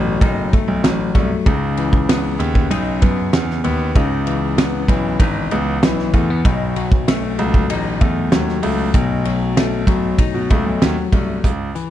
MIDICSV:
0, 0, Header, 1, 4, 480
1, 0, Start_track
1, 0, Tempo, 623701
1, 1127, Time_signature, 4, 2, 24, 8
1, 9159, End_track
2, 0, Start_track
2, 0, Title_t, "Clean electric guitar"
2, 0, Program_c, 0, 27
2, 0, Note_on_c, 0, 47, 80
2, 0, Note_on_c, 0, 54, 58
2, 0, Note_on_c, 0, 57, 69
2, 0, Note_on_c, 0, 63, 62
2, 169, Note_off_c, 0, 63, 0
2, 172, Note_on_c, 0, 63, 71
2, 399, Note_off_c, 0, 57, 0
2, 408, Note_on_c, 0, 57, 64
2, 640, Note_off_c, 0, 54, 0
2, 649, Note_on_c, 0, 54, 65
2, 878, Note_off_c, 0, 57, 0
2, 887, Note_on_c, 0, 57, 58
2, 1121, Note_off_c, 0, 47, 0
2, 1124, Note_on_c, 0, 49, 83
2, 1128, Note_off_c, 0, 63, 0
2, 1131, Note_on_c, 0, 63, 67
2, 1175, Note_off_c, 0, 57, 0
2, 1176, Note_off_c, 0, 54, 0
2, 1369, Note_on_c, 0, 52, 60
2, 1606, Note_on_c, 0, 59, 65
2, 1847, Note_off_c, 0, 52, 0
2, 2081, Note_off_c, 0, 63, 0
2, 2084, Note_on_c, 0, 63, 78
2, 2319, Note_off_c, 0, 59, 0
2, 2322, Note_on_c, 0, 59, 63
2, 2799, Note_off_c, 0, 59, 0
2, 2802, Note_on_c, 0, 59, 69
2, 3037, Note_off_c, 0, 49, 0
2, 3047, Note_on_c, 0, 49, 83
2, 3048, Note_off_c, 0, 63, 0
2, 3051, Note_on_c, 0, 63, 75
2, 3286, Note_on_c, 0, 52, 68
2, 3526, Note_off_c, 0, 59, 0
2, 3529, Note_on_c, 0, 59, 69
2, 3756, Note_off_c, 0, 52, 0
2, 3765, Note_on_c, 0, 52, 59
2, 4000, Note_off_c, 0, 63, 0
2, 4003, Note_on_c, 0, 63, 75
2, 4244, Note_off_c, 0, 59, 0
2, 4247, Note_on_c, 0, 59, 60
2, 4477, Note_off_c, 0, 52, 0
2, 4486, Note_on_c, 0, 52, 70
2, 4723, Note_off_c, 0, 59, 0
2, 4726, Note_on_c, 0, 57, 66
2, 4848, Note_off_c, 0, 57, 0
2, 4848, Note_on_c, 0, 59, 58
2, 4963, Note_off_c, 0, 49, 0
2, 4966, Note_on_c, 0, 47, 86
2, 4970, Note_off_c, 0, 63, 0
2, 4973, Note_on_c, 0, 63, 68
2, 5013, Note_off_c, 0, 52, 0
2, 5014, Note_off_c, 0, 59, 0
2, 5206, Note_on_c, 0, 54, 64
2, 5447, Note_on_c, 0, 57, 73
2, 5676, Note_off_c, 0, 54, 0
2, 5685, Note_on_c, 0, 54, 60
2, 5923, Note_off_c, 0, 63, 0
2, 5926, Note_on_c, 0, 63, 72
2, 6154, Note_off_c, 0, 57, 0
2, 6163, Note_on_c, 0, 57, 60
2, 6394, Note_off_c, 0, 54, 0
2, 6403, Note_on_c, 0, 54, 70
2, 6635, Note_off_c, 0, 57, 0
2, 6644, Note_on_c, 0, 57, 64
2, 6871, Note_off_c, 0, 47, 0
2, 6880, Note_on_c, 0, 47, 81
2, 6883, Note_off_c, 0, 63, 0
2, 6886, Note_on_c, 0, 63, 73
2, 7113, Note_off_c, 0, 54, 0
2, 7122, Note_on_c, 0, 54, 60
2, 7357, Note_off_c, 0, 57, 0
2, 7366, Note_on_c, 0, 57, 63
2, 7595, Note_off_c, 0, 54, 0
2, 7605, Note_on_c, 0, 54, 57
2, 7841, Note_off_c, 0, 63, 0
2, 7844, Note_on_c, 0, 63, 64
2, 8075, Note_off_c, 0, 57, 0
2, 8084, Note_on_c, 0, 57, 61
2, 8315, Note_off_c, 0, 54, 0
2, 8325, Note_on_c, 0, 54, 64
2, 8552, Note_off_c, 0, 57, 0
2, 8562, Note_on_c, 0, 57, 58
2, 8804, Note_off_c, 0, 47, 0
2, 8852, Note_off_c, 0, 57, 0
2, 8853, Note_off_c, 0, 54, 0
2, 9045, Note_on_c, 0, 52, 53
2, 9068, Note_off_c, 0, 63, 0
2, 9159, Note_off_c, 0, 52, 0
2, 9159, End_track
3, 0, Start_track
3, 0, Title_t, "Grand piano"
3, 0, Program_c, 1, 0
3, 0, Note_on_c, 1, 33, 98
3, 118, Note_off_c, 1, 33, 0
3, 165, Note_on_c, 1, 30, 103
3, 358, Note_off_c, 1, 30, 0
3, 410, Note_on_c, 1, 35, 28
3, 458, Note_off_c, 1, 35, 0
3, 522, Note_on_c, 1, 35, 97
3, 620, Note_off_c, 1, 35, 0
3, 645, Note_on_c, 1, 33, 89
3, 838, Note_off_c, 1, 33, 0
3, 885, Note_on_c, 1, 36, 89
3, 982, Note_off_c, 1, 36, 0
3, 1125, Note_on_c, 1, 37, 96
3, 1814, Note_off_c, 1, 37, 0
3, 1841, Note_on_c, 1, 39, 97
3, 2035, Note_off_c, 1, 39, 0
3, 2081, Note_on_c, 1, 35, 97
3, 2323, Note_off_c, 1, 35, 0
3, 2328, Note_on_c, 1, 42, 99
3, 2519, Note_off_c, 1, 42, 0
3, 2567, Note_on_c, 1, 40, 93
3, 2758, Note_off_c, 1, 40, 0
3, 2805, Note_on_c, 1, 39, 97
3, 2997, Note_off_c, 1, 39, 0
3, 3043, Note_on_c, 1, 37, 91
3, 3732, Note_off_c, 1, 37, 0
3, 3759, Note_on_c, 1, 35, 106
3, 3953, Note_off_c, 1, 35, 0
3, 3998, Note_on_c, 1, 32, 92
3, 4192, Note_off_c, 1, 32, 0
3, 4245, Note_on_c, 1, 37, 101
3, 4436, Note_off_c, 1, 37, 0
3, 4485, Note_on_c, 1, 35, 91
3, 4677, Note_off_c, 1, 35, 0
3, 4724, Note_on_c, 1, 40, 94
3, 4916, Note_off_c, 1, 40, 0
3, 4964, Note_on_c, 1, 35, 96
3, 5684, Note_off_c, 1, 35, 0
3, 5684, Note_on_c, 1, 37, 101
3, 5876, Note_off_c, 1, 37, 0
3, 5921, Note_on_c, 1, 33, 83
3, 6162, Note_off_c, 1, 33, 0
3, 6167, Note_on_c, 1, 40, 91
3, 6358, Note_off_c, 1, 40, 0
3, 6404, Note_on_c, 1, 39, 80
3, 6596, Note_off_c, 1, 39, 0
3, 6638, Note_on_c, 1, 37, 96
3, 6832, Note_off_c, 1, 37, 0
3, 6882, Note_on_c, 1, 35, 109
3, 7572, Note_off_c, 1, 35, 0
3, 7597, Note_on_c, 1, 35, 100
3, 7792, Note_off_c, 1, 35, 0
3, 7960, Note_on_c, 1, 47, 84
3, 8057, Note_off_c, 1, 47, 0
3, 8084, Note_on_c, 1, 37, 89
3, 8180, Note_off_c, 1, 37, 0
3, 8203, Note_on_c, 1, 35, 77
3, 8300, Note_off_c, 1, 35, 0
3, 8324, Note_on_c, 1, 39, 98
3, 8420, Note_off_c, 1, 39, 0
3, 8561, Note_on_c, 1, 36, 77
3, 8755, Note_off_c, 1, 36, 0
3, 8804, Note_on_c, 1, 37, 77
3, 8997, Note_off_c, 1, 37, 0
3, 9159, End_track
4, 0, Start_track
4, 0, Title_t, "Drums"
4, 164, Note_on_c, 9, 36, 106
4, 169, Note_on_c, 9, 51, 80
4, 241, Note_off_c, 9, 36, 0
4, 246, Note_off_c, 9, 51, 0
4, 409, Note_on_c, 9, 51, 54
4, 410, Note_on_c, 9, 36, 88
4, 486, Note_off_c, 9, 51, 0
4, 487, Note_off_c, 9, 36, 0
4, 647, Note_on_c, 9, 38, 120
4, 649, Note_on_c, 9, 51, 69
4, 724, Note_off_c, 9, 38, 0
4, 726, Note_off_c, 9, 51, 0
4, 884, Note_on_c, 9, 36, 85
4, 885, Note_on_c, 9, 51, 55
4, 961, Note_off_c, 9, 36, 0
4, 962, Note_off_c, 9, 51, 0
4, 1126, Note_on_c, 9, 36, 118
4, 1127, Note_on_c, 9, 51, 71
4, 1203, Note_off_c, 9, 36, 0
4, 1204, Note_off_c, 9, 51, 0
4, 1365, Note_on_c, 9, 51, 57
4, 1442, Note_off_c, 9, 51, 0
4, 1484, Note_on_c, 9, 36, 97
4, 1561, Note_off_c, 9, 36, 0
4, 1610, Note_on_c, 9, 38, 106
4, 1611, Note_on_c, 9, 51, 93
4, 1687, Note_off_c, 9, 38, 0
4, 1688, Note_off_c, 9, 51, 0
4, 1847, Note_on_c, 9, 51, 68
4, 1924, Note_off_c, 9, 51, 0
4, 1964, Note_on_c, 9, 36, 79
4, 2041, Note_off_c, 9, 36, 0
4, 2086, Note_on_c, 9, 51, 83
4, 2163, Note_off_c, 9, 51, 0
4, 2323, Note_on_c, 9, 51, 57
4, 2327, Note_on_c, 9, 36, 90
4, 2400, Note_off_c, 9, 51, 0
4, 2404, Note_off_c, 9, 36, 0
4, 2564, Note_on_c, 9, 38, 127
4, 2566, Note_on_c, 9, 51, 67
4, 2641, Note_off_c, 9, 38, 0
4, 2643, Note_off_c, 9, 51, 0
4, 2694, Note_on_c, 9, 38, 34
4, 2771, Note_off_c, 9, 38, 0
4, 2804, Note_on_c, 9, 51, 61
4, 2881, Note_off_c, 9, 51, 0
4, 3044, Note_on_c, 9, 36, 106
4, 3045, Note_on_c, 9, 51, 69
4, 3121, Note_off_c, 9, 36, 0
4, 3122, Note_off_c, 9, 51, 0
4, 3285, Note_on_c, 9, 51, 58
4, 3362, Note_off_c, 9, 51, 0
4, 3526, Note_on_c, 9, 38, 107
4, 3527, Note_on_c, 9, 51, 80
4, 3603, Note_off_c, 9, 38, 0
4, 3604, Note_off_c, 9, 51, 0
4, 3759, Note_on_c, 9, 36, 87
4, 3765, Note_on_c, 9, 51, 70
4, 3836, Note_off_c, 9, 36, 0
4, 3842, Note_off_c, 9, 51, 0
4, 3999, Note_on_c, 9, 36, 106
4, 4001, Note_on_c, 9, 51, 84
4, 4076, Note_off_c, 9, 36, 0
4, 4077, Note_off_c, 9, 51, 0
4, 4243, Note_on_c, 9, 51, 60
4, 4320, Note_off_c, 9, 51, 0
4, 4486, Note_on_c, 9, 38, 118
4, 4488, Note_on_c, 9, 51, 68
4, 4563, Note_off_c, 9, 38, 0
4, 4565, Note_off_c, 9, 51, 0
4, 4611, Note_on_c, 9, 38, 36
4, 4688, Note_off_c, 9, 38, 0
4, 4722, Note_on_c, 9, 36, 77
4, 4722, Note_on_c, 9, 51, 55
4, 4799, Note_off_c, 9, 36, 0
4, 4799, Note_off_c, 9, 51, 0
4, 4964, Note_on_c, 9, 36, 102
4, 4965, Note_on_c, 9, 51, 72
4, 5041, Note_off_c, 9, 36, 0
4, 5042, Note_off_c, 9, 51, 0
4, 5204, Note_on_c, 9, 51, 58
4, 5281, Note_off_c, 9, 51, 0
4, 5323, Note_on_c, 9, 36, 108
4, 5400, Note_off_c, 9, 36, 0
4, 5449, Note_on_c, 9, 38, 105
4, 5450, Note_on_c, 9, 51, 91
4, 5526, Note_off_c, 9, 38, 0
4, 5527, Note_off_c, 9, 51, 0
4, 5685, Note_on_c, 9, 51, 65
4, 5762, Note_off_c, 9, 51, 0
4, 5803, Note_on_c, 9, 36, 88
4, 5880, Note_off_c, 9, 36, 0
4, 5924, Note_on_c, 9, 51, 84
4, 6001, Note_off_c, 9, 51, 0
4, 6164, Note_on_c, 9, 51, 54
4, 6166, Note_on_c, 9, 36, 101
4, 6241, Note_off_c, 9, 51, 0
4, 6243, Note_off_c, 9, 36, 0
4, 6403, Note_on_c, 9, 38, 110
4, 6405, Note_on_c, 9, 51, 69
4, 6480, Note_off_c, 9, 38, 0
4, 6482, Note_off_c, 9, 51, 0
4, 6531, Note_on_c, 9, 38, 35
4, 6608, Note_off_c, 9, 38, 0
4, 6640, Note_on_c, 9, 46, 52
4, 6640, Note_on_c, 9, 51, 57
4, 6717, Note_off_c, 9, 46, 0
4, 6717, Note_off_c, 9, 51, 0
4, 6879, Note_on_c, 9, 44, 59
4, 6879, Note_on_c, 9, 51, 73
4, 6881, Note_on_c, 9, 36, 101
4, 6956, Note_off_c, 9, 44, 0
4, 6956, Note_off_c, 9, 51, 0
4, 6958, Note_off_c, 9, 36, 0
4, 7122, Note_on_c, 9, 51, 55
4, 7199, Note_off_c, 9, 51, 0
4, 7366, Note_on_c, 9, 38, 100
4, 7367, Note_on_c, 9, 51, 86
4, 7443, Note_off_c, 9, 38, 0
4, 7444, Note_off_c, 9, 51, 0
4, 7597, Note_on_c, 9, 36, 94
4, 7602, Note_on_c, 9, 51, 69
4, 7674, Note_off_c, 9, 36, 0
4, 7679, Note_off_c, 9, 51, 0
4, 7838, Note_on_c, 9, 36, 102
4, 7840, Note_on_c, 9, 51, 84
4, 7915, Note_off_c, 9, 36, 0
4, 7917, Note_off_c, 9, 51, 0
4, 8083, Note_on_c, 9, 51, 59
4, 8086, Note_on_c, 9, 36, 94
4, 8160, Note_off_c, 9, 51, 0
4, 8163, Note_off_c, 9, 36, 0
4, 8326, Note_on_c, 9, 38, 126
4, 8328, Note_on_c, 9, 51, 66
4, 8403, Note_off_c, 9, 38, 0
4, 8405, Note_off_c, 9, 51, 0
4, 8562, Note_on_c, 9, 36, 85
4, 8563, Note_on_c, 9, 51, 60
4, 8639, Note_off_c, 9, 36, 0
4, 8640, Note_off_c, 9, 51, 0
4, 8805, Note_on_c, 9, 36, 99
4, 8808, Note_on_c, 9, 42, 73
4, 8882, Note_off_c, 9, 36, 0
4, 8885, Note_off_c, 9, 42, 0
4, 9048, Note_on_c, 9, 42, 52
4, 9125, Note_off_c, 9, 42, 0
4, 9159, End_track
0, 0, End_of_file